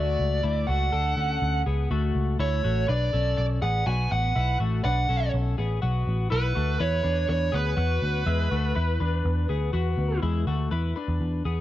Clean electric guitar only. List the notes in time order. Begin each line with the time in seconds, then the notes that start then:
Already playing: A3 F#4
0.43 A3 E4
0.68 A3 F#4
0.93 D4 A4
1.17 C#4 A4
1.66 B3 G#4
1.91 A3 F#4
2.39 A3 E4
2.64 A3 F#4
2.88 D4 B4
3.13 C#4 A4
3.62 B3 G#4
3.87 B3 F#4
4.35 B3 E4
4.60 A3 F#4
4.84 D4 B4
5.09 C#4 A4
5.58 B3 G#4
5.82 B3 F#4
6.30 B3 E4
6.55 A3 F#4
6.80 E4 B4
7.03 D4 B4
7.52 B3 G#4
7.77 B3 F#4
8.27 G#3 E4
8.51 A3 F#4
8.76 E4 B4
9.00 D4 B4
9.49 B3 G#4
9.73 B3 F#4
10.23 G#3 E4
10.47 A3 F#4
10.71 E4 B4
10.96 D4 B4
11.45 B3 G#4